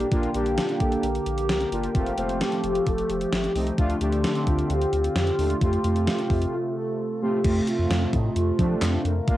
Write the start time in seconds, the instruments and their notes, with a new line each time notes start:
Already playing: analog synth pad G4
0.00 closed hi-hat
0.12 analog synth bass A#1, analog synth pad D3 A#3, analog polysynth A#3 D4 F4, kick, closed hi-hat
0.23 closed hi-hat
0.34 analog synth bass A#1, analog polysynth A#3 D4 G4, closed hi-hat
0.46 closed hi-hat
0.57 alto flute F4, snare, closed hi-hat
0.69 closed hi-hat
0.80 analog synth bass A#1, alto flute A4, kick, closed hi-hat
0.92 closed hi-hat
1.03 analog synth bass A#1, alto flute A#4, closed hi-hat
1.15 closed hi-hat
1.26 analog synth bass A#1, closed hi-hat
1.38 closed hi-hat
1.49 analog synth bass C2, alto flute A#4, snare, closed hi-hat
1.61 closed hi-hat
1.72 analog synth bass G1, analog polysynth A#3 D4 F4, closed hi-hat
1.83 closed hi-hat
1.95 analog synth bass F1, analog synth pad F3 A3, analog polysynth A3 C4 F4, alto flute A#4, kick, closed hi-hat
2.06 closed hi-hat
2.18 analog synth bass F1, analog polysynth A3 C4 F4, alto flute C5, closed hi-hat
2.29 closed hi-hat
2.41 alto flute G4, snare, closed hi-hat
2.52 closed hi-hat
2.64 analog synth bass F1, closed hi-hat
2.75 closed hi-hat
2.87 analog synth bass F1, alto flute A4, kick, closed hi-hat
2.98 closed hi-hat
3.09 analog synth bass F1, alto flute G4, closed hi-hat
3.21 closed hi-hat
3.32 analog synth bass G1, alto flute G4, snare, closed hi-hat
3.44 closed hi-hat
3.55 analog synth bass C2, analog polysynth A3 C4 D#4, open hi-hat
3.67 closed hi-hat
3.78 analog synth bass D2, analog synth pad D3 C4 F4, analog polysynth A3 D4 F4, kick, closed hi-hat
3.90 closed hi-hat
4.01 analog synth bass D2, analog polysynth A3 D4 G4, closed hi-hat
4.12 closed hi-hat
4.24 alto flute D4, snare, closed hi-hat
4.35 closed hi-hat
4.47 analog synth bass D2, alto flute F4, kick, closed hi-hat
4.58 closed hi-hat
4.70 analog synth bass D2, alto flute G4, closed hi-hat
4.81 closed hi-hat
4.93 analog synth bass D2, closed hi-hat
5.04 closed hi-hat
5.15 analog synth bass F2, alto flute G4, snare, closed hi-hat
5.27 closed hi-hat
5.38 analog synth bass D#2, analog polysynth A3 D4 F4, open hi-hat
5.50 closed hi-hat
5.61 analog synth bass F2, analog synth pad C3 A3, analog polysynth A3 C4 F4, alto flute G4, kick, closed hi-hat
5.73 closed hi-hat
5.84 analog synth bass F2, analog polysynth A3 C4 F4, closed hi-hat
5.96 closed hi-hat
6.07 snare, closed hi-hat
6.18 closed hi-hat
6.30 analog synth bass F2, kick, open hi-hat
6.42 closed hi-hat
6.53 alto flute F4
6.76 alto flute A4
7.22 analog polysynth A3 C4 F4, alto flute G4
7.44 analog synth bass F2, analog synth pad C3 A3 F4, analog polysynth A3 C4 F4, kick, closed hi-hat, crash
7.67 alto flute F4, closed hi-hat
7.79 analog synth bass F2
7.90 analog synth bass F2, snare, closed hi-hat
8.13 analog synth bass A2, alto flute D#4, kick, closed hi-hat
8.36 analog synth bass F2, alto flute F4, closed hi-hat
8.59 analog synth bass F3, analog polysynth A3 C4 D4, kick, closed hi-hat
8.82 analog synth bass F2, snare, clap, closed hi-hat
9.04 analog synth bass F2, alto flute A#4, closed hi-hat
9.28 analog synth bass A#1, analog synth pad D3 A#3, analog polysynth A#3 D4 F4, kick, closed hi-hat